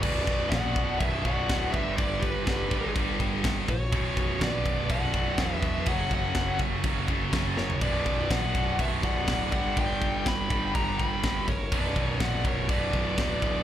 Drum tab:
CC |x-x-x-x-x-x-x-x-|x-x-x-x-x-x-x-x-|x-x-x-x-x-x-x-x-|x-x-x-x-x-x-x---|
SD |----o-------o---|----o-------o---|----o-------o---|----o-------o-o-|
FT |----------------|----------------|----------------|---------------o|
BD |o-o-o-o-o-o-o-o-|o-o-o-o-o-o-o-o-|o-o-o-o-o-o-o-o-|o-o-o-o-o-o-o---|

CC |x-x-x-x-x-x-x-x-|x-x-x-x-x-x-x-x-|x-x-x-x-x-x-x-x-|
SD |----o-------o---|----o-------o---|----o-------o---|
FT |----------------|----------------|----------------|
BD |o-o-o-o-o-o-o-o-|o-o-o-o-o-o-o-o-|o-o-o-o-o-o-o-o-|